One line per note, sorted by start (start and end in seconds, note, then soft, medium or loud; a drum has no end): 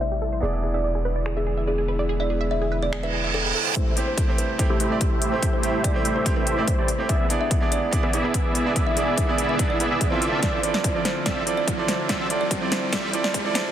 0.00 0.41 A1 medium
0.00 0.39 C3 medium
0.00 0.39 G3 medium
0.00 0.39 A3 medium
0.00 0.39 C4 medium
0.00 0.39 E4 medium
0.00 0.40 E4 medium
0.00 0.40 G4 medium
0.00 0.41 A4 medium
0.00 0.04 C5 medium
0.00 0.41 E5 medium
0.00 0.24 E5 medium
0.00 downlifter medium
0.12 0.14 G4 medium
0.22 0.24 A4 medium
0.33 0.39 C5 medium
0.40 3.53 E1 medium
0.40 3.52 D3 medium
0.40 3.52 G#3 medium
0.40 3.52 B3 medium
0.40 3.52 D4 medium
0.40 3.53 E4 medium
0.40 3.73 E4 medium
0.40 0.45 G#4 loud
0.40 3.53 G#4 medium
0.40 0.60 D5 medium
0.40 3.54 D5 medium
0.53 0.57 E5 loud
0.63 0.68 G#4 medium
0.74 0.91 D5 medium
0.74 0.80 E5 loud
0.84 0.87 D5 medium
0.95 0.98 G#4 medium
1.05 1.22 B4 medium
1.05 1.08 B4 medium
1.16 1.22 D5 medium
1.26 1.29 G#4 loud
1.26 finger snap medium
1.37 1.54 G#4 medium
1.37 1.41 E5 loud
1.47 1.51 G#4 medium
1.57 1.64 E5 loud
1.68 1.85 G#4 medium
1.68 1.70 D5 medium
1.78 1.81 G#4 medium
1.88 1.91 B4 medium
1.99 2.05 D5 medium
2.09 2.12 G#4 loud
2.20 2.37 D5 medium
2.20 2.24 E5 loud
2.30 2.34 G#4 medium
2.41 2.47 E5 loud
2.51 2.54 D5 medium
2.51 2.68 E5 medium
2.62 2.64 G#4 medium
2.72 2.74 B4 medium
2.82 2.89 D5 medium
2.82 2.94 D5 medium
2.93 2.95 G#4 loud
2.93 finger snap medium
2.93 reverse cymbal medium
3.03 3.20 B4 medium
3.03 3.07 E5 loud
3.13 3.18 G#4 medium
3.24 3.30 E5 medium
3.34 3.57 A4 medium
3.34 3.37 D5 medium
3.45 3.47 G#4 medium
3.55 3.58 A4 medium
3.66 3.72 C5 medium
3.76 7.06 C3 medium
3.76 7.06 G3 medium
3.76 7.06 A3 medium
3.76 3.93 A3 medium
3.76 3.93 E4 medium
3.76 7.06 E4 medium
3.76 3.93 G4 medium
3.76 3.93 C5 medium
3.76 3.93 E5 loud
3.76 kick medium
3.76 closed hi-hat medium
3.76 riser medium
3.96 4.25 A3 medium
3.96 4.25 C4 medium
3.96 4.26 E4 medium
3.96 4.26 G4 medium
3.96 4.26 C5 medium
3.96 closed hi-hat medium
4.07 4.25 C5 medium
4.18 kick loud
4.18 closed hi-hat medium
4.27 4.56 A3 medium
4.27 4.57 C4 medium
4.27 4.57 E4 medium
4.27 4.57 G4 medium
4.27 4.57 C5 medium
4.38 4.56 B4 medium
4.38 closed hi-hat medium
4.58 4.88 A3 medium
4.58 4.88 C4 medium
4.58 4.88 E4 medium
4.58 4.88 G4 medium
4.58 4.89 C5 medium
4.58 kick loud
4.58 closed hi-hat medium
4.70 4.78 A3 medium
4.70 4.78 E4 medium
4.70 4.78 G4 medium
4.70 4.87 G4 medium
4.70 4.78 C5 medium
4.70 4.78 E5 medium
4.80 5.40 A3 medium
4.80 5.40 E4 medium
4.80 5.40 G4 medium
4.80 5.40 C5 medium
4.80 5.40 E5 medium
4.80 closed hi-hat medium
4.90 4.97 A3 medium
4.90 4.97 C4 medium
4.90 4.97 E4 medium
4.90 4.97 G4 medium
4.90 4.98 D5 medium
5.01 5.18 G4 medium
5.01 kick medium
5.01 closed hi-hat medium
5.22 closed hi-hat medium
5.31 5.42 A3 medium
5.31 5.42 C4 medium
5.31 5.42 E4 medium
5.31 5.43 G4 medium
5.31 5.43 C5 medium
5.42 6.76 A3 loud
5.42 6.76 E4 medium
5.42 6.76 G4 medium
5.42 6.76 C5 medium
5.42 6.76 E5 loud
5.42 kick medium
5.42 closed hi-hat medium
5.53 5.70 C5 medium
5.62 5.92 A3 medium
5.62 5.92 C4 medium
5.62 5.92 E4 medium
5.62 5.93 G4 medium
5.62 5.93 C5 medium
5.62 closed hi-hat medium
5.84 6.01 D5 medium
5.84 kick loud
5.84 closed hi-hat medium
5.94 6.23 A3 medium
5.94 6.23 C4 medium
5.94 6.23 E4 medium
5.94 6.24 G4 medium
5.94 6.24 C5 medium
6.05 closed hi-hat medium
6.16 6.27 C5 medium
6.25 6.54 A3 medium
6.25 6.55 C4 medium
6.25 6.55 E4 medium
6.25 6.55 G4 medium
6.25 6.55 C5 loud
6.25 kick loud
6.25 closed hi-hat medium
6.36 6.54 B4 loud
6.47 closed hi-hat medium
6.56 6.63 A3 medium
6.56 6.63 C4 medium
6.56 6.64 E4 medium
6.56 6.64 G4 medium
6.56 6.64 D5 medium
6.67 6.90 C5 medium
6.67 kick loud
6.67 closed hi-hat medium
6.78 6.89 A3 loud
6.78 6.89 E4 medium
6.78 6.89 G4 medium
6.78 6.89 C5 medium
6.78 6.89 D5 loud
6.88 closed hi-hat medium
6.98 7.07 A3 medium
6.98 7.08 C4 medium
6.98 7.08 E4 medium
6.98 7.08 G4 medium
6.98 7.08 C5 medium
7.09 13.72 D3 medium
7.09 10.19 G#3 medium
7.09 7.27 B3 medium
7.09 10.19 B3 medium
7.09 7.27 E4 medium
7.09 10.19 E4 medium
7.09 7.27 G#4 medium
7.09 7.27 D5 medium
7.09 7.26 E5 medium
7.09 7.27 E5 loud
7.09 kick medium
7.09 closed hi-hat medium
7.29 7.58 B3 medium
7.29 7.59 D4 medium
7.29 7.59 E4 medium
7.29 7.59 G#4 medium
7.29 7.59 D5 medium
7.29 closed hi-hat medium
7.41 7.58 E5 medium
7.51 kick loud
7.51 closed hi-hat medium
7.60 7.90 B3 medium
7.60 7.90 D4 medium
7.60 7.90 E4 medium
7.60 7.90 G#4 medium
7.60 7.91 D5 medium
7.72 7.89 D5 medium
7.72 closed hi-hat medium
7.91 8.21 B3 medium
7.91 8.21 D4 medium
7.91 8.22 E4 medium
7.91 8.22 G#4 medium
7.91 8.22 D5 medium
7.91 kick loud
7.91 closed hi-hat medium
8.03 8.11 B3 medium
8.03 8.11 E4 medium
8.03 8.11 G#4 medium
8.03 8.20 B4 medium
8.03 8.11 D5 medium
8.03 8.11 E5 medium
8.13 8.73 B3 medium
8.13 8.73 E4 medium
8.13 8.73 G#4 medium
8.13 8.73 D5 medium
8.13 8.73 E5 medium
8.13 closed hi-hat medium
8.23 8.30 B3 medium
8.23 8.30 D4 medium
8.23 8.30 E4 medium
8.23 8.31 G#4 medium
8.23 8.31 E5 medium
8.34 8.51 B4 medium
8.34 kick medium
8.34 closed hi-hat medium
8.55 closed hi-hat medium
8.65 8.75 B3 medium
8.65 8.76 D4 medium
8.65 8.76 E4 medium
8.65 8.76 G#4 medium
8.65 8.76 D5 medium
8.76 9.78 B3 medium
8.76 9.78 E4 medium
8.76 9.78 G#4 medium
8.76 9.78 E5 loud
8.76 kick loud
8.76 closed hi-hat medium
8.87 9.04 E5 medium
8.96 9.25 B3 medium
8.96 9.26 D4 medium
8.96 9.26 E4 medium
8.96 9.26 G#4 medium
8.96 9.26 D5 medium
8.96 closed hi-hat medium
9.17 9.35 E5 medium
9.17 kick loud
9.17 closed hi-hat medium
9.27 9.56 B3 medium
9.27 9.57 D4 medium
9.27 9.57 E4 medium
9.27 9.57 G#4 medium
9.27 9.57 D5 medium
9.38 closed hi-hat medium
9.49 9.60 E5 medium
9.58 9.78 B3 medium
9.58 9.78 D4 medium
9.58 9.78 E4 medium
9.58 9.78 G#4 medium
9.58 9.79 D5 medium
9.58 kick loud
9.58 closed hi-hat medium
9.70 9.87 D5 medium
9.79 10.09 B3 medium
9.79 9.89 B3 medium
9.79 10.09 D4 medium
9.79 10.09 E4 medium
9.79 9.89 E4 medium
9.79 9.89 G#4 medium
9.79 10.09 G#4 medium
9.79 10.10 B4 medium
9.79 9.89 D5 medium
9.79 9.89 E5 medium
9.79 closed hi-hat medium
9.91 10.08 B3 medium
9.91 10.08 E4 medium
9.91 10.08 G#4 medium
9.91 10.08 D5 medium
9.91 10.08 E5 medium
10.01 10.24 B4 medium
10.01 kick loud
10.01 closed hi-hat medium
10.10 10.42 C4 medium
10.10 10.40 C4 medium
10.10 10.42 E4 medium
10.10 10.43 F4 medium
10.10 10.40 F4 medium
10.10 10.40 A4 medium
10.10 10.43 A4 medium
10.10 10.40 D5 medium
10.10 10.40 E5 medium
10.10 10.44 E5 loud
10.22 13.72 F3 medium
10.22 13.72 C4 medium
10.22 13.72 E4 medium
10.22 closed hi-hat medium
10.42 10.60 D5 medium
10.42 kick loud
10.42 snare soft
10.42 closed hi-hat medium
10.62 10.92 C4 medium
10.62 10.92 E4 medium
10.62 10.92 F4 medium
10.62 10.93 A4 medium
10.62 10.93 D5 medium
10.62 closed hi-hat medium
10.74 10.91 D5 medium
10.74 snare soft
10.84 kick loud
10.84 closed hi-hat medium
10.94 11.23 C4 medium
10.94 11.23 E4 medium
10.94 11.24 F4 medium
10.94 11.24 A4 medium
10.94 11.24 D5 medium
11.05 11.22 C5 medium
11.05 snare medium
11.05 closed hi-hat medium
11.26 11.43 C4 medium
11.26 11.43 F4 medium
11.26 11.43 A4 medium
11.26 11.43 D5 medium
11.26 11.43 E5 medium
11.26 kick loud
11.26 snare medium
11.26 closed hi-hat medium
11.46 11.75 C4 medium
11.46 11.76 E4 medium
11.46 11.76 F4 medium
11.46 11.76 A4 medium
11.46 11.76 D5 medium
11.46 closed hi-hat medium
11.57 11.74 D5 medium
11.68 kick loud
11.68 closed hi-hat medium
11.77 12.06 C4 medium
11.77 12.07 E4 medium
11.77 12.07 F4 medium
11.77 12.07 A4 medium
11.77 12.07 D5 medium
11.88 12.06 C5 medium
11.88 snare medium
11.88 closed hi-hat medium
12.09 12.27 C4 medium
12.09 12.27 F4 medium
12.09 12.27 A4 medium
12.09 12.26 D5 medium
12.09 12.27 D5 medium
12.09 12.27 E5 loud
12.09 kick loud
12.09 snare medium
12.09 closed hi-hat medium
12.29 12.59 C4 medium
12.29 12.59 E4 medium
12.29 12.59 F4 medium
12.29 12.59 A4 medium
12.29 12.60 D5 medium
12.29 closed hi-hat medium
12.41 12.58 D5 medium
12.51 kick loud
12.51 closed hi-hat medium
12.61 12.90 C4 medium
12.61 12.90 E4 medium
12.61 12.90 F4 medium
12.61 12.90 A4 medium
12.61 12.91 D5 medium
12.72 12.89 C5 medium
12.72 snare medium
12.72 closed hi-hat medium
12.92 13.10 C4 medium
12.92 13.10 F4 medium
12.92 13.10 A4 medium
12.92 13.10 D5 loud
12.92 13.10 D5 medium
12.92 13.10 E5 loud
12.92 kick loud
12.92 snare medium
12.92 closed hi-hat medium
13.12 13.42 C4 medium
13.12 13.42 E4 medium
13.12 13.42 F4 medium
13.12 13.43 A4 medium
13.12 13.43 D5 medium
13.12 closed hi-hat medium
13.24 13.41 D5 medium
13.24 snare medium
13.34 kick loud
13.34 closed hi-hat medium
13.44 13.72 C4 medium
13.44 13.72 E4 medium
13.44 13.72 F4 medium
13.44 13.72 A4 medium
13.44 13.72 D5 medium
13.55 13.72 C5 medium
13.55 snare medium
13.55 closed hi-hat medium